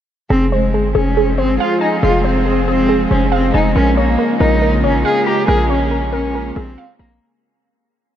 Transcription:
0.30 F1 F3 G#3 C4 G#4 C5
0.52 G#3 C5
0.73 G1 G#4
0.95 F1 C#4 G#4
1.17 G#4
1.38 G1 C4 C5
1.60 F4 F5
1.81 D#4 G#5
2.02 F1 F4 G#4
2.24 C4 C5
2.46 G#4
2.68 C4 G#4
2.89 G#4
3.11 F1 C#4 C5
3.32 C4 F5
3.54 F1 D#4 G#5
3.75 A#1 C#3 A#3 C#4 F4 A#4
3.97 A#3 C#5
4.19 A#4
4.40 A#1 D#4 A#4
4.62 A#4
4.84 G#1 C#4 C#5
4.95 A#1
5.05 G#4 F5
5.26 G4 A#5
5.48 A#1 G#4 A#4
5.69 C#4 C#5
5.91 A#4
6.13 C#4 A#4
6.35 A#4
6.56 A#1 C4 G#4
6.78 F5
6.99 A#1 A#3 A#5

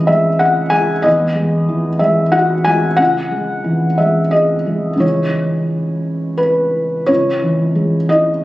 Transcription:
Already playing: C#2 E3 G#3 D#5
0.07 G#3 E5
0.39 G#4 F#5
0.70 G#3 G#5
1.02 E2 D#5
1.35 G#3
1.69 E3
1.99 G#3 E5
2.32 F#4 F#5
2.64 G#3 G#5
2.97 C#2 F#5
3.31 G#3
3.64 E3
3.98 G#3 E5
4.31 G#4 D#5
4.66 G#3
4.96 C#2 E3 G#3 D#4
5.00 C#5
6.38 B4
7.06 C#2 C#5
7.42 E3
7.75 G#3
8.09 E4 D#5

